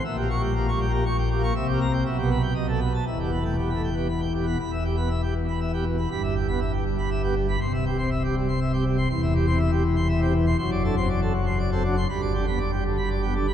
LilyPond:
<<
  \new Staff \with { instrumentName = "Pipe organ" } { \time 3/4 \key e \minor \tempo 4 = 120 e''16 g'16 cis'''16 g''16 g'16 cis'''16 g''16 g'16 cis'''16 g''16 g'16 cis'''16 | e''16 g'16 bes''16 g''16 e''16 g'16 b''16 g''16 dis''16 a'16 b''16 a''16 | e''16 g'16 b''16 g''16 g'16 b''16 g''16 g'16 b''16 g''16 g'16 b''16 | b''16 e''16 g'16 b''16 e''16 g'16 b,16 b''16 e''16 g'16 b,16 b''16 |
b''16 e''16 g'16 b''16 e''16 g'16 g16 b''16 e''16 g'16 g16 b''16 | c'''16 e''16 g'16 c'''16 e''16 g'16 g16 c'''16 e''16 g'16 g16 c'''16 | c'''16 e''16 g'16 c'''16 e''16 g'16 e16 c'''16 e''16 g'16 e16 c'''16 | \key g \major c'''16 d''16 a'16 c'''16 d''16 a'16 fis16 c'''16 d''16 a'16 fis16 c'''16 |
b''16 d''16 g'16 b''16 d''16 g'16 d16 b''16 d''16 g'16 d16 b''16 | }
  \new Staff \with { instrumentName = "Pipe organ" } { \time 3/4 \key e \minor << { \tuplet 3/2 { ais,8 ais8 g8 ais8 g8 ais8 r4 ais8 } | \tuplet 3/2 { c8 bes8 r8 b,8 b8 r8 b,8 b8 r8 } | \tuplet 3/2 { e,8 b8 a8 b8 a8 b8 r4 b8 } | e,8. b16 r4 r16 b16 r8 |
g,8. b16 r4 r16 b16 r8 | c,8. c'16 r4 r16 c'16 r8 | e,8. c'16 r4 r16 c'16 r8 | \key g \major fis,8 d'16 c'16 r4 r16 c'16 d'16 r16 |
g,8 d'16 b16 r4 r16 b16 d'16 r16 | } \\ { ais,,2. | c,4 b,,4 b,,4 | e,,2. | e,,2. |
g,,2. | c,,2. | e,,2. | fis,,2. |
g,,2. | } >> }
>>